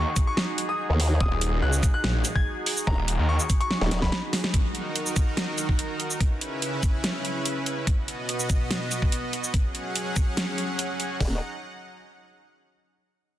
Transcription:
0.00 4.50 D#4 medium
0.00 4.50 F#4 medium
0.00 4.50 G#4 medium
0.00 0.24 C#6 loud
0.16 kick loud
0.16 closed hi-hat medium
0.16 shaker medium
0.27 0.65 C#6 loud
0.37 snare loud
0.58 closed hi-hat medium
0.69 0.88 D#6 medium
0.90 1.19 D#2 loud
1.00 open hi-hat medium
1.21 1.30 D#1 medium
1.21 1.58 D#6 loud
1.21 kick loud
1.31 1.61 D#1 loud
1.41 closed hi-hat medium
1.62 1.81 C#2 loud
1.62 1.91 F#6 loud
1.73 shaker medium
1.83 kick loud
1.83 closed hi-hat medium
1.83 shaker medium
1.94 2.31 F#6 loud
2.04 2.23 A#1 medium
2.04 snare loud
2.25 closed hi-hat medium
2.25 shaker medium
2.35 2.54 G#6 medium
2.35 kick medium
2.66 open hi-hat medium
2.77 shaker medium
2.87 2.96 D#1 medium
2.87 3.25 A#5 loud
2.87 kick loud
2.98 3.17 D#1 loud
3.08 closed hi-hat medium
3.19 3.38 D#2 loud
3.29 3.57 C#6 loud
3.40 shaker medium
3.50 kick loud
3.50 closed hi-hat medium
3.50 shaker medium
3.60 3.98 C#6 medium
3.60 closed hi-hat soft
3.71 snare medium
3.81 4.11 D#1 medium
3.81 snare medium
3.91 snare medium
3.91 closed hi-hat medium
4.02 4.21 B5 medium
4.02 kick medium
4.02 snare medium
4.12 snare medium
4.33 snare loud
4.33 open hi-hat loud
4.44 snare medium
4.54 6.19 D#3 medium
4.54 6.19 D#4 medium
4.54 6.19 F#4 medium
4.54 6.19 A#4 medium
4.54 kick loud
4.54 closed hi-hat medium
4.75 closed hi-hat medium
4.96 closed hi-hat medium
5.06 shaker medium
5.16 kick loud
5.16 closed hi-hat medium
5.16 shaker soft
5.37 snare loud
5.37 closed hi-hat medium
5.58 closed hi-hat medium
5.58 shaker soft
5.69 kick medium
5.79 closed hi-hat medium
6.00 closed hi-hat medium
6.11 shaker soft
6.20 7.86 C#3 medium
6.20 7.86 C#4 medium
6.20 7.86 E4 medium
6.20 7.86 B4 medium
6.20 kick loud
6.20 closed hi-hat medium
6.41 closed hi-hat medium
6.62 closed hi-hat medium
6.83 kick loud
6.83 closed hi-hat medium
6.83 shaker soft
7.04 snare loud
7.04 closed hi-hat medium
7.25 closed hi-hat medium
7.45 closed hi-hat medium
7.66 closed hi-hat medium
7.87 9.52 B2 medium
7.87 9.52 B3 medium
7.87 9.52 F#4 medium
7.87 9.52 D#5 medium
7.87 kick loud
7.87 closed hi-hat medium
8.08 closed hi-hat medium
8.29 closed hi-hat medium
8.40 shaker medium
8.50 kick loud
8.50 closed hi-hat medium
8.50 shaker medium
8.71 snare loud
8.71 closed hi-hat medium
8.91 closed hi-hat medium
8.91 shaker medium
9.02 kick medium
9.12 closed hi-hat medium
9.33 closed hi-hat medium
9.44 shaker medium
9.54 11.19 F#3 medium
9.54 11.19 C#4 medium
9.54 11.19 G#4 medium
9.54 11.19 F#5 medium
9.54 kick loud
9.54 closed hi-hat medium
9.75 closed hi-hat medium
9.96 closed hi-hat medium
10.16 kick loud
10.16 closed hi-hat medium
10.16 shaker medium
10.37 snare loud
10.37 closed hi-hat medium
10.58 closed hi-hat medium
10.79 closed hi-hat medium
11.00 closed hi-hat soft
11.20 11.40 D#1 medium
11.20 11.40 D#4 medium
11.20 11.40 D#5 medium
11.20 11.40 F#5 medium
11.20 11.40 A#5 medium
11.20 kick loud
11.20 open hi-hat medium

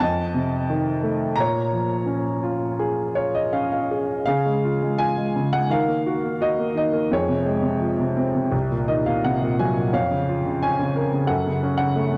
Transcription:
0.00 1.34 F2 medium
0.00 1.35 D#5 medium
0.00 1.41 A5 medium
0.34 1.35 C3 soft
0.70 1.36 D#3 medium
1.03 1.37 A3 soft
1.36 4.23 A#2 medium
1.36 3.49 A#5 medium
1.40 3.14 C#5 medium
1.72 3.12 F3 medium
2.06 3.49 C#4 soft
2.43 3.14 F4 soft
2.79 3.90 G#4 medium
3.15 4.24 F4 soft
3.15 3.33 C#5 medium
3.35 3.52 D#5 medium
3.53 4.25 C#4 soft
3.53 3.70 F5 medium
3.72 4.23 F5 medium
3.91 4.26 G#4 soft
4.26 5.34 C#3 medium
4.26 5.68 G#4 medium
4.26 5.00 F5 medium
4.46 4.80 G#3 soft
4.64 4.96 F4 soft
4.82 5.16 G#3 soft
4.98 5.68 F4 soft
4.98 5.54 G#5 medium
5.17 5.51 G#3 soft
5.36 5.70 C#3 soft
5.53 5.70 G#3 soft
5.53 5.70 F#5 medium
5.70 6.74 D#3 medium
5.70 7.09 A#4 medium
5.70 6.45 F5 medium
5.88 6.22 A#3 soft
6.06 6.39 F#4 soft
6.24 6.57 A#3 soft
6.40 7.09 F#4 medium
6.40 6.76 D#5 medium
6.59 6.91 A#3 soft
6.75 7.10 D#3 soft
6.75 7.13 D#5 medium
6.93 7.11 A#3 soft
7.11 8.49 F2 medium
7.11 8.50 G#4 medium
7.11 7.79 C#5 medium
7.28 7.61 C3 soft
7.46 8.49 G#3 soft
7.62 7.98 C3 soft
7.80 8.50 F3 soft
7.99 8.33 C3 soft
8.17 8.51 C4 soft
8.35 8.52 C3 soft
8.52 9.89 C2 medium
8.71 9.04 A#2 soft
8.88 9.91 D#3 medium
8.88 9.05 D#5 medium
9.06 9.41 A#2 soft
9.06 9.23 F5 medium
9.24 9.92 C3 medium
9.24 9.57 F#5 medium
9.42 9.77 A#2 soft
9.59 9.93 F#3 medium
9.59 9.92 G#5 medium
9.78 9.94 A#2 soft
9.93 11.24 F2 medium
9.93 11.24 C#5 medium
9.93 10.58 F5 medium
10.11 10.44 C#3 soft
10.29 11.26 F4 medium
10.46 10.78 C#3 soft
10.62 11.27 C#4 soft
10.62 11.31 G#5 medium
10.80 11.12 C#3 soft
10.96 11.28 A#4 soft
11.13 11.29 C#3 soft
11.27 12.18 F#2 medium
11.27 12.18 A4 medium
11.27 11.76 F#5 medium
11.46 11.78 C#3 soft
11.63 12.18 C#4 medium
11.77 12.09 C#3 soft
11.77 12.18 F#5 medium
11.96 12.18 A3 medium
12.11 12.18 C#3 soft

